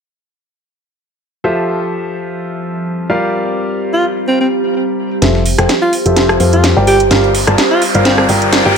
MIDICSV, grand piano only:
0, 0, Header, 1, 2, 480
1, 0, Start_track
1, 0, Key_signature, -1, "major"
1, 0, Tempo, 472441
1, 1464, Time_signature, 4, 2, 24, 8
1, 8917, End_track
2, 0, Start_track
2, 0, Title_t, "Grand piano"
2, 0, Program_c, 0, 0
2, 1464, Note_on_c, 0, 53, 70
2, 1464, Note_on_c, 0, 67, 64
2, 1464, Note_on_c, 0, 69, 68
2, 1464, Note_on_c, 0, 72, 64
2, 1464, Note_on_c, 0, 76, 76
2, 1465, Note_on_c, 0, 65, 67
2, 3118, Note_off_c, 0, 53, 0
2, 3118, Note_off_c, 0, 65, 0
2, 3118, Note_off_c, 0, 67, 0
2, 3118, Note_off_c, 0, 69, 0
2, 3118, Note_off_c, 0, 72, 0
2, 3118, Note_off_c, 0, 76, 0
2, 3145, Note_on_c, 0, 65, 65
2, 3145, Note_on_c, 0, 74, 65
2, 3146, Note_on_c, 0, 55, 75
2, 3146, Note_on_c, 0, 67, 67
2, 3146, Note_on_c, 0, 70, 67
2, 3146, Note_on_c, 0, 77, 81
2, 5279, Note_off_c, 0, 55, 0
2, 5279, Note_off_c, 0, 65, 0
2, 5279, Note_off_c, 0, 67, 0
2, 5279, Note_off_c, 0, 70, 0
2, 5279, Note_off_c, 0, 74, 0
2, 5279, Note_off_c, 0, 77, 0
2, 5305, Note_on_c, 0, 53, 81
2, 5305, Note_on_c, 0, 67, 72
2, 5305, Note_on_c, 0, 69, 74
2, 5305, Note_on_c, 0, 72, 68
2, 5305, Note_on_c, 0, 76, 86
2, 5306, Note_on_c, 0, 65, 73
2, 5500, Note_off_c, 0, 53, 0
2, 5500, Note_off_c, 0, 72, 0
2, 5501, Note_off_c, 0, 65, 0
2, 5501, Note_off_c, 0, 67, 0
2, 5501, Note_off_c, 0, 69, 0
2, 5501, Note_off_c, 0, 76, 0
2, 5675, Note_on_c, 0, 53, 75
2, 5675, Note_on_c, 0, 65, 66
2, 5675, Note_on_c, 0, 67, 69
2, 5675, Note_on_c, 0, 69, 69
2, 5675, Note_on_c, 0, 72, 68
2, 5675, Note_on_c, 0, 79, 81
2, 5784, Note_off_c, 0, 53, 0
2, 5784, Note_off_c, 0, 65, 0
2, 5784, Note_off_c, 0, 67, 0
2, 5784, Note_off_c, 0, 69, 0
2, 5784, Note_off_c, 0, 72, 0
2, 5784, Note_off_c, 0, 79, 0
2, 6155, Note_on_c, 0, 53, 80
2, 6155, Note_on_c, 0, 65, 75
2, 6155, Note_on_c, 0, 67, 76
2, 6155, Note_on_c, 0, 76, 88
2, 6156, Note_on_c, 0, 69, 77
2, 6156, Note_on_c, 0, 72, 76
2, 6478, Note_off_c, 0, 53, 0
2, 6478, Note_off_c, 0, 65, 0
2, 6478, Note_off_c, 0, 67, 0
2, 6478, Note_off_c, 0, 69, 0
2, 6478, Note_off_c, 0, 76, 0
2, 6479, Note_off_c, 0, 72, 0
2, 6503, Note_on_c, 0, 65, 65
2, 6503, Note_on_c, 0, 67, 66
2, 6503, Note_on_c, 0, 72, 67
2, 6503, Note_on_c, 0, 77, 80
2, 6504, Note_on_c, 0, 53, 71
2, 6504, Note_on_c, 0, 69, 66
2, 6843, Note_off_c, 0, 53, 0
2, 6843, Note_off_c, 0, 65, 0
2, 6843, Note_off_c, 0, 67, 0
2, 6843, Note_off_c, 0, 69, 0
2, 6843, Note_off_c, 0, 72, 0
2, 6843, Note_off_c, 0, 77, 0
2, 6874, Note_on_c, 0, 70, 86
2, 6875, Note_on_c, 0, 55, 92
2, 6875, Note_on_c, 0, 65, 85
2, 6875, Note_on_c, 0, 67, 85
2, 6875, Note_on_c, 0, 74, 86
2, 6875, Note_on_c, 0, 79, 104
2, 7062, Note_off_c, 0, 55, 0
2, 7062, Note_off_c, 0, 65, 0
2, 7062, Note_off_c, 0, 67, 0
2, 7062, Note_off_c, 0, 70, 0
2, 7062, Note_off_c, 0, 74, 0
2, 7062, Note_off_c, 0, 79, 0
2, 7224, Note_on_c, 0, 55, 79
2, 7224, Note_on_c, 0, 65, 71
2, 7224, Note_on_c, 0, 67, 73
2, 7224, Note_on_c, 0, 70, 74
2, 7224, Note_on_c, 0, 74, 71
2, 7224, Note_on_c, 0, 77, 91
2, 7420, Note_off_c, 0, 55, 0
2, 7420, Note_off_c, 0, 65, 0
2, 7420, Note_off_c, 0, 67, 0
2, 7420, Note_off_c, 0, 70, 0
2, 7420, Note_off_c, 0, 74, 0
2, 7420, Note_off_c, 0, 77, 0
2, 7595, Note_on_c, 0, 55, 78
2, 7595, Note_on_c, 0, 65, 68
2, 7595, Note_on_c, 0, 67, 67
2, 7595, Note_on_c, 0, 70, 68
2, 7595, Note_on_c, 0, 74, 69
2, 7595, Note_on_c, 0, 81, 88
2, 7704, Note_off_c, 0, 55, 0
2, 7704, Note_off_c, 0, 65, 0
2, 7704, Note_off_c, 0, 67, 0
2, 7704, Note_off_c, 0, 70, 0
2, 7704, Note_off_c, 0, 74, 0
2, 7704, Note_off_c, 0, 81, 0
2, 8075, Note_on_c, 0, 55, 82
2, 8075, Note_on_c, 0, 65, 76
2, 8075, Note_on_c, 0, 67, 78
2, 8075, Note_on_c, 0, 70, 73
2, 8075, Note_on_c, 0, 74, 75
2, 8075, Note_on_c, 0, 77, 92
2, 8398, Note_off_c, 0, 55, 0
2, 8398, Note_off_c, 0, 65, 0
2, 8398, Note_off_c, 0, 67, 0
2, 8398, Note_off_c, 0, 70, 0
2, 8398, Note_off_c, 0, 74, 0
2, 8398, Note_off_c, 0, 77, 0
2, 8423, Note_on_c, 0, 79, 81
2, 8424, Note_on_c, 0, 55, 73
2, 8424, Note_on_c, 0, 65, 67
2, 8424, Note_on_c, 0, 67, 66
2, 8424, Note_on_c, 0, 70, 67
2, 8424, Note_on_c, 0, 74, 64
2, 8763, Note_off_c, 0, 79, 0
2, 8764, Note_off_c, 0, 55, 0
2, 8764, Note_off_c, 0, 65, 0
2, 8764, Note_off_c, 0, 67, 0
2, 8764, Note_off_c, 0, 70, 0
2, 8764, Note_off_c, 0, 74, 0
2, 8795, Note_on_c, 0, 55, 90
2, 8795, Note_on_c, 0, 65, 83
2, 8795, Note_on_c, 0, 67, 85
2, 8795, Note_on_c, 0, 74, 81
2, 8795, Note_on_c, 0, 79, 104
2, 8796, Note_on_c, 0, 70, 84
2, 8917, Note_off_c, 0, 55, 0
2, 8917, Note_off_c, 0, 65, 0
2, 8917, Note_off_c, 0, 67, 0
2, 8917, Note_off_c, 0, 70, 0
2, 8917, Note_off_c, 0, 74, 0
2, 8917, Note_off_c, 0, 79, 0
2, 8917, End_track
0, 0, End_of_file